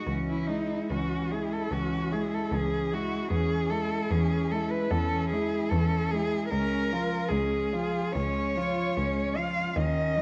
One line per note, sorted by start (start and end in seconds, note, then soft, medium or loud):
0.07 0.77 C#2 medium
0.07 0.50 E3 soft
0.07 0.51 C#4 soft
0.29 0.48 E4 medium
0.47 0.92 G#3 soft
0.47 0.89 D#4 medium
0.47 0.92 E4 soft
0.90 1.59 C#2 medium
0.90 1.33 E3 soft
0.90 1.33 C#4 soft
0.90 1.33 F#4 medium
1.31 1.71 G#3 soft
1.31 1.71 E4 soft
1.31 1.54 G#4 medium
1.53 1.74 A4 medium
1.71 2.40 C#2 medium
1.71 2.15 E3 soft
1.71 2.13 C#4 soft
1.71 2.14 F#4 medium
2.12 2.55 G#3 soft
2.12 2.53 E4 soft
2.12 2.35 G#4 medium
2.34 2.55 A4 medium
2.52 3.19 C#2 medium
2.52 2.95 E3 soft
2.52 2.93 C#4 soft
2.52 2.95 G#4 medium
2.92 3.32 G#3 soft
2.92 3.30 E4 soft
2.92 3.31 F#4 medium
3.31 3.99 E2 medium
3.31 3.72 E3 soft
3.31 3.72 C#4 soft
3.31 3.72 G#4 medium
3.70 4.13 G#3 soft
3.70 4.13 E4 soft
3.70 4.13 A4 medium
4.11 4.79 E2 medium
4.11 4.52 E3 soft
4.11 4.54 C#4 soft
4.11 4.53 G#4 medium
4.51 4.91 G#3 soft
4.51 4.92 E4 soft
4.51 4.72 A4 medium
4.71 4.92 B4 medium
4.91 5.59 E2 medium
4.91 5.34 E3 soft
4.91 5.34 C#4 soft
4.91 5.30 A4 medium
5.30 5.73 G#3 soft
5.30 5.73 E4 soft
5.30 5.71 G#4 medium
5.70 6.39 E2 medium
5.70 6.14 E3 soft
5.70 6.15 C#4 soft
5.70 6.12 A4 medium
6.11 6.52 G#3 soft
6.11 6.52 E4 soft
6.11 6.49 G#4 medium
6.50 7.18 C#2 medium
6.50 6.94 G#3 medium
6.50 7.29 A#4 medium
6.54 6.94 C#4 soft
6.93 7.33 F3 soft
6.93 7.32 F4 soft
7.28 8.01 C#2 medium
7.28 7.75 G#3 soft
7.28 7.74 C#4 soft
7.28 8.14 G#4 medium
7.73 8.14 F3 soft
7.73 8.14 F4 soft
8.12 8.84 C#2 medium
8.12 8.58 C#4 soft
8.12 9.38 C#5 medium
8.16 8.57 G#3 soft
8.56 8.98 F3 soft
8.56 8.98 F4 soft
8.96 9.65 C#2 medium
8.96 9.38 G#3 soft
8.96 9.37 C#4 soft
9.36 9.76 F3 soft
9.36 9.75 F4 soft
9.36 9.79 F5 medium
9.76 10.22 D#2 medium
9.76 10.18 D#3 soft
9.76 10.19 C#4 soft
9.76 10.22 D#5 medium
10.17 10.22 F#3 soft
10.17 10.22 D#4 soft